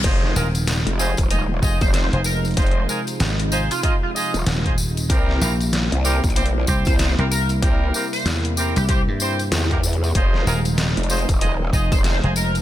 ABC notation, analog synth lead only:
X:1
M:4/4
L:1/16
Q:"Swing 16ths" 1/4=95
K:Fm
V:1 name="Analog synth lead"
z8 z3 c c z B z | z6 z F F F z6 | z8 z3 c c z B z | z3 c z3 G G z6 z |
z8 z3 c c z B z |]